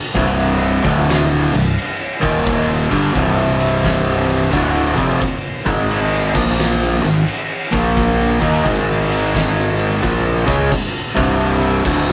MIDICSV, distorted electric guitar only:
0, 0, Header, 1, 2, 480
1, 0, Start_track
1, 0, Key_signature, -3, "minor"
1, 0, Tempo, 688073
1, 1712, Time_signature, 4, 2, 24, 8
1, 8457, End_track
2, 0, Start_track
2, 0, Title_t, "Distorted electric guitar"
2, 0, Program_c, 0, 30
2, 99, Note_on_c, 0, 36, 96
2, 102, Note_on_c, 0, 43, 101
2, 103, Note_on_c, 0, 48, 102
2, 572, Note_off_c, 0, 36, 0
2, 573, Note_off_c, 0, 43, 0
2, 574, Note_off_c, 0, 48, 0
2, 579, Note_on_c, 0, 38, 97
2, 586, Note_on_c, 0, 45, 100
2, 588, Note_on_c, 0, 50, 104
2, 1052, Note_off_c, 0, 38, 0
2, 1056, Note_off_c, 0, 45, 0
2, 1056, Note_off_c, 0, 50, 0
2, 1065, Note_on_c, 0, 36, 60
2, 1069, Note_on_c, 0, 43, 69
2, 1198, Note_off_c, 0, 36, 0
2, 1200, Note_off_c, 0, 43, 0
2, 1538, Note_on_c, 0, 39, 108
2, 1543, Note_on_c, 0, 46, 99
2, 1546, Note_on_c, 0, 51, 113
2, 2012, Note_off_c, 0, 39, 0
2, 2014, Note_off_c, 0, 46, 0
2, 2016, Note_off_c, 0, 51, 0
2, 2022, Note_on_c, 0, 43, 96
2, 2024, Note_on_c, 0, 50, 88
2, 2028, Note_on_c, 0, 55, 108
2, 2179, Note_off_c, 0, 43, 0
2, 2185, Note_off_c, 0, 50, 0
2, 2188, Note_on_c, 0, 36, 101
2, 2188, Note_on_c, 0, 43, 104
2, 2189, Note_off_c, 0, 55, 0
2, 2193, Note_on_c, 0, 48, 122
2, 3144, Note_off_c, 0, 36, 0
2, 3145, Note_off_c, 0, 43, 0
2, 3147, Note_on_c, 0, 38, 78
2, 3148, Note_off_c, 0, 48, 0
2, 3151, Note_on_c, 0, 45, 81
2, 3155, Note_on_c, 0, 50, 92
2, 3452, Note_off_c, 0, 38, 0
2, 3454, Note_off_c, 0, 45, 0
2, 3456, Note_off_c, 0, 50, 0
2, 3459, Note_on_c, 0, 41, 95
2, 3464, Note_on_c, 0, 48, 112
2, 3467, Note_on_c, 0, 53, 122
2, 3624, Note_off_c, 0, 41, 0
2, 3627, Note_off_c, 0, 48, 0
2, 3629, Note_off_c, 0, 53, 0
2, 3944, Note_on_c, 0, 44, 90
2, 3947, Note_on_c, 0, 56, 103
2, 3948, Note_on_c, 0, 51, 93
2, 4415, Note_off_c, 0, 44, 0
2, 4417, Note_off_c, 0, 51, 0
2, 4417, Note_off_c, 0, 56, 0
2, 4422, Note_on_c, 0, 46, 90
2, 4425, Note_on_c, 0, 53, 102
2, 4431, Note_on_c, 0, 58, 101
2, 4893, Note_off_c, 0, 46, 0
2, 4896, Note_off_c, 0, 53, 0
2, 4896, Note_on_c, 0, 44, 70
2, 4898, Note_off_c, 0, 58, 0
2, 4901, Note_on_c, 0, 51, 63
2, 5035, Note_off_c, 0, 44, 0
2, 5037, Note_off_c, 0, 51, 0
2, 5379, Note_on_c, 0, 46, 91
2, 5382, Note_on_c, 0, 53, 116
2, 5385, Note_on_c, 0, 58, 113
2, 5851, Note_off_c, 0, 53, 0
2, 5852, Note_off_c, 0, 58, 0
2, 5853, Note_off_c, 0, 46, 0
2, 5854, Note_on_c, 0, 51, 99
2, 5861, Note_on_c, 0, 58, 92
2, 5865, Note_on_c, 0, 63, 107
2, 6022, Note_off_c, 0, 51, 0
2, 6025, Note_on_c, 0, 44, 96
2, 6026, Note_off_c, 0, 58, 0
2, 6028, Note_off_c, 0, 63, 0
2, 6030, Note_on_c, 0, 51, 116
2, 6034, Note_on_c, 0, 56, 97
2, 6983, Note_off_c, 0, 44, 0
2, 6986, Note_off_c, 0, 51, 0
2, 6988, Note_off_c, 0, 56, 0
2, 6991, Note_on_c, 0, 46, 68
2, 6994, Note_on_c, 0, 53, 90
2, 6997, Note_on_c, 0, 58, 85
2, 7294, Note_off_c, 0, 46, 0
2, 7296, Note_off_c, 0, 53, 0
2, 7297, Note_off_c, 0, 58, 0
2, 7300, Note_on_c, 0, 49, 97
2, 7302, Note_on_c, 0, 56, 111
2, 7308, Note_on_c, 0, 61, 114
2, 7465, Note_off_c, 0, 49, 0
2, 7466, Note_off_c, 0, 56, 0
2, 7469, Note_off_c, 0, 61, 0
2, 7778, Note_on_c, 0, 36, 82
2, 7781, Note_on_c, 0, 43, 94
2, 7783, Note_on_c, 0, 48, 88
2, 8252, Note_off_c, 0, 36, 0
2, 8253, Note_off_c, 0, 43, 0
2, 8254, Note_off_c, 0, 48, 0
2, 8259, Note_on_c, 0, 38, 103
2, 8262, Note_on_c, 0, 45, 92
2, 8268, Note_on_c, 0, 50, 114
2, 8457, Note_off_c, 0, 38, 0
2, 8457, Note_off_c, 0, 45, 0
2, 8457, Note_off_c, 0, 50, 0
2, 8457, End_track
0, 0, End_of_file